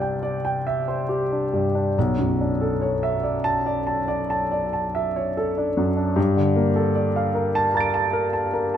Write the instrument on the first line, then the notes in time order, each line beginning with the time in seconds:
grand piano
Already playing: C2 D4 G4 C5 D5 E5 G5
0.02 G5
0.23 D5
0.45 G5
0.67 E5
0.88 C5
1.09 G4
1.32 D4
1.54 G2
1.75 D4
1.98 B1
2.19 F#2
2.41 D4
2.61 A4
2.81 C#5
3.03 E5
3.23 D5
3.44 A5
3.66 D5
3.87 A5
4.08 D5
4.30 A5
4.52 D5
4.73 A5
4.95 E5
5.16 C#5
5.37 A4
5.58 D4
5.77 F#2
5.97 D4
6.16 G2
6.36 D3
6.56 A#3
6.76 A4
6.95 D5
7.16 F5
7.35 A#4
7.55 A5
7.74 A#4 A#5 A6
7.80 D7
7.94 A5
8.13 A#4
8.33 A5
8.54 A#4